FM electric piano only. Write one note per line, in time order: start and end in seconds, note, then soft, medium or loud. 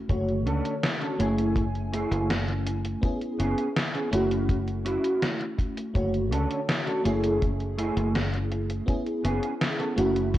0.00 0.09 A3 medium
0.00 0.12 C#4 medium
0.00 0.12 E4 medium
0.00 0.12 F#4 loud
0.09 1.13 D3 medium
0.09 1.12 A3 medium
0.09 1.14 F#4 medium
0.09 1.12 C#5 medium
1.19 2.95 A3 medium
1.19 2.95 C#4 medium
1.19 2.96 E4 medium
1.19 2.96 G#5 loud
3.02 4.05 B3 medium
3.02 4.05 C#4 medium
3.02 4.06 E4 medium
3.02 4.06 G#4 medium
4.11 5.87 A3 loud
4.11 5.88 C#4 medium
4.11 5.88 E4 medium
4.11 5.89 F#4 loud
5.94 6.98 D3 medium
5.94 6.97 A3 medium
5.94 6.99 F#4 medium
5.94 6.98 C#5 medium
7.04 8.80 A3 medium
7.04 8.80 C#4 medium
7.04 8.81 E4 medium
7.04 8.82 G#4 loud
8.86 9.90 B3 medium
8.86 9.90 C#4 medium
8.86 9.91 E4 medium
8.86 9.91 G#4 medium
9.96 10.38 A3 loud
9.96 10.38 C#4 medium
9.96 10.38 E4 medium
9.96 10.38 F#4 loud